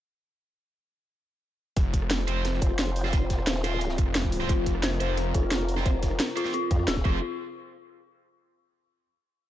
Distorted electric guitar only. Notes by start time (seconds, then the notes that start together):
2.27 C4 F4 C5
3.04 C4 F4 C5
3.64 C4 F4 C5
4.41 C4 F4 C5
5.00 C4 F4 C5
5.77 C4 F4 C5
6.37 C4 F4 C5
7.05 C4 F4 C5